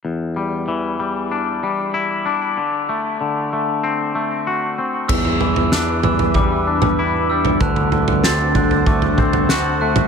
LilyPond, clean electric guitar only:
\new Staff \with { instrumentName = "Clean electric guitar" } { \time 4/4 \key e \minor \tempo 4 = 95 e,8 g8 e8 g8 d'8 g8 e'8 d'8 | d8 a8 d8 a8 c'8 a8 fis'8 c'8 | e,8 e8 d'8 e8 g8 d'8 e'8 g8 | d8 d8 c'8 d8 a8 c'8 fis'8 a8 | }